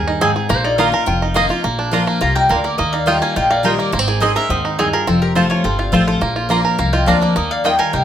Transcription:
Already playing: upright bass D#2, steel-string acoustic guitar G2, five-string banjo G#4 A#4, resonator guitar played with a steel bar D#5
0.08 five-string banjo D#4
0.21 steel-string acoustic guitar G#2, mandolin C4 G#4 D#5 G#5, five-string banjo C4
0.36 five-string banjo G#4
0.49 upright bass A#1, steel-string acoustic guitar A#2, five-string banjo A#3, resonator guitar played with a steel bar C5
0.64 five-string banjo D#4, resonator guitar played with a steel bar D5
0.78 steel-string acoustic guitar D#3 A#3 D#4 F4, mandolin A#3 F4 D#5 A#5, five-string banjo F4, resonator guitar played with a steel bar F5
0.92 steel-string acoustic guitar D#4 F4, five-string banjo A#4
1.06 upright bass F1, steel-string acoustic guitar F2, five-string banjo F4, resonator guitar played with a steel bar G5
1.22 five-string banjo D#4
1.34 steel-string acoustic guitar D#3 A#3 D#4 F4, mandolin A#3 F4 D#5 A#5, five-string banjo A#3, resonator guitar played with a steel bar F5
1.49 steel-string acoustic guitar D#4 F4, five-string banjo F4
1.64 upright bass A#1, steel-string acoustic guitar A#2, five-string banjo A#3
1.79 five-string banjo D4
1.91 steel-string acoustic guitar F3 A#3 D4 F4, mandolin A#3 F4 D5 A#5, five-string banjo F4
2.07 five-string banjo A#3
2.21 upright bass C2, steel-string acoustic guitar C3, five-string banjo F4, resonator guitar played with a steel bar F5, mandolin A#5
2.36 five-string banjo A#3, resonator guitar played with a steel bar D#5, mandolin G5
2.49 upright bass D2, steel-string acoustic guitar D3, mandolin A#3 F4 D5 F5 A#5, five-string banjo A#4, resonator guitar played with a steel bar D5
2.64 five-string banjo A#3, resonator guitar played with a steel bar A#4, mandolin D5
2.78 upright bass D#2, steel-string acoustic guitar D#3, five-string banjo A#3, resonator guitar played with a steel bar A#4, mandolin D#5
2.93 five-string banjo D#4, resonator guitar played with a steel bar D5, mandolin F5
3.06 steel-string acoustic guitar D#3 G3 D#4 F4, mandolin A#3 F4 D#5 G5, five-string banjo F4, resonator guitar played with a steel bar D#5
3.22 five-string banjo A#3, resonator guitar played with a steel bar F5, mandolin G#5
3.36 upright bass A#1, steel-string acoustic guitar A#2, five-string banjo F4, resonator guitar played with a steel bar D#5, mandolin G5
3.50 five-string banjo A#3, resonator guitar played with a steel bar D5, mandolin F5
3.63 steel-string acoustic guitar D#3 G3 D#4 F4, mandolin A#3 F4 D#5 G5, five-string banjo A#4, resonator guitar played with a steel bar A#4
3.79 five-string banjo A#3, resonator guitar played with a steel bar A#4, mandolin D5
3.92 upright bass G#1, steel-string acoustic guitar G#2, five-string banjo A#3, resonator guitar played with a steel bar G#4, mandolin C5
3.99 five-string banjo C4
4.08 five-string banjo G#4, resonator guitar played with a steel bar A#4, mandolin D5
4.20 steel-string acoustic guitar G#3 C4 D#4 G#4, mandolin C4 G#4 D#5 G#5, five-string banjo D#4, resonator guitar played with a steel bar C5
4.35 steel-string acoustic guitar D#4 G#4, five-string banjo A#4, resonator guitar played with a steel bar C5, mandolin E5
4.49 upright bass D#2, steel-string acoustic guitar G#2, five-string banjo C4, resonator guitar played with a steel bar C5, mandolin D#5
4.65 five-string banjo D#4
4.78 steel-string acoustic guitar G2, mandolin C4 G#4 A#4 D#5 G#5, resonator guitar played with a steel bar D#4, five-string banjo G#4
4.93 resonator guitar played with a steel bar F4, mandolin G#4, five-string banjo A#4
5.07 upright bass F1, steel-string acoustic guitar F2, five-string banjo C4, resonator guitar played with a steel bar F4, mandolin A4
5.22 resonator guitar played with a steel bar G4, mandolin A#4
5.35 steel-string acoustic guitar F3 A3 C4 F4, mandolin C4 F4 C5 A5, five-string banjo F4, resonator guitar played with a steel bar A4
5.50 five-string banjo F4, resonator guitar played with a steel bar A4, mandolin C#5
5.64 upright bass G1, steel-string acoustic guitar C3, five-string banjo C4, resonator guitar played with a steel bar A4, mandolin C5
5.79 resonator guitar played with a steel bar D4, mandolin F4, five-string banjo F4
5.92 upright bass A1, steel-string acoustic guitar F3 A3 C4 F4, mandolin C4 F4 A4 C5 A5, five-string banjo F4, resonator guitar played with a steel bar F4
6.07 five-string banjo F4, resonator guitar played with a steel bar A4, mandolin C5
6.21 upright bass A#1, steel-string acoustic guitar A#2, five-string banjo A#3
6.36 five-string banjo F4
6.49 steel-string acoustic guitar F3 A#3 D4 F4, five-string banjo A#3, mandolin A#3 F4 D5 A#5
6.65 five-string banjo A#4
6.78 upright bass C2, steel-string acoustic guitar F2, five-string banjo A#3, resonator guitar played with a steel bar F5, mandolin A#5
6.93 five-string banjo F4, resonator guitar played with a steel bar D#5, mandolin G5
7.06 upright bass D2, steel-string acoustic guitar F3 A#3 D4 F4, mandolin A#3 F4 D5 F5 A#5, five-string banjo D4, resonator guitar played with a steel bar D5
7.22 five-string banjo A#3, resonator guitar played with a steel bar A#4, mandolin D5
7.36 upright bass D#2, steel-string acoustic guitar D#3, five-string banjo A#3, resonator guitar played with a steel bar A#4, mandolin D#5
7.51 resonator guitar played with a steel bar D5, mandolin F5
7.64 steel-string acoustic guitar D#3 G3 D#4 F4, mandolin A#3 F4 D#5 G5, five-string banjo D#4, resonator guitar played with a steel bar D#5
7.79 five-string banjo A#4, resonator guitar played with a steel bar F5, mandolin G#5
7.93 upright bass C2, steel-string acoustic guitar C3, five-string banjo A#3, resonator guitar played with a steel bar D#5, mandolin G5

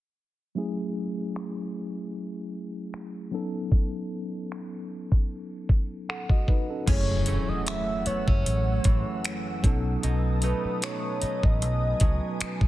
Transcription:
0.55 tine electric piano F#3 A3 C#4 E4 G#4
1.36 finger snap
2.94 finger snap
3.31 tine electric piano F#3 B3 C#4 D#4 A4
3.72 kick
4.52 finger snap
5.12 kick
5.69 kick
6.09 tine electric piano A4 F#5, finger snap
6.29 tine electric piano F#4 D#5, kick
6.48 tine electric piano D#4 B4, kick
6.70 tine electric piano C#4 A4
6.86 fingered electric bass F#1, clean electric guitar F#2 C#4, tine electric piano F#3 A3 C#4 E4 G#4, ambient pad A3 F#5 E6, soft synth lead C#5, kick, closed hi-hat, crash, impact
7.26 clean electric guitar E3 A3 C#4, closed hi-hat
7.49 soft synth lead D#5, muted fingered electric bass stroke
7.67 clean electric guitar E3, soft synth lead E5, finger snap, closed hi-hat
8.06 clean electric guitar B3, soft synth lead C#5, muted fingered electric bass stroke, closed hi-hat
8.28 fingered electric bass F#1, clean electric guitar C#4, soft synth lead C#5, kick
8.46 fingered electric bass A1, closed hi-hat
8.84 fingered electric bass A1, clean electric guitar E3, kick, closed hi-hat
9.25 finger snap, closed hi-hat
9.63 fingered electric bass B1, clean electric guitar B2, tine electric piano F#3 B3 C#4 D#4 A4, ambient pad B4 A5 D#6, kick, closed hi-hat
10.03 fingered electric bass B1, clean electric guitar B2 D#4, closed hi-hat
10.42 clean electric guitar F#3 A3 D#4, soft synth lead B4, closed hi-hat
10.65 soft synth lead B4, muted fingered electric bass stroke
10.82 clean electric guitar F#3, soft synth lead C#5, finger snap, closed hi-hat
11.22 clean electric guitar D#4, ambient pad G#5, muted fingered electric bass stroke, closed hi-hat
11.43 fingered electric bass A1, soft synth lead D#5, kick
11.62 fingered electric bass B1, closed hi-hat
12.00 fingered electric bass C#2, clean electric guitar F#3, kick, closed hi-hat
12.41 finger snap, muted fingered electric bass stroke, closed hi-hat
12.61 fingered electric bass B1, kick

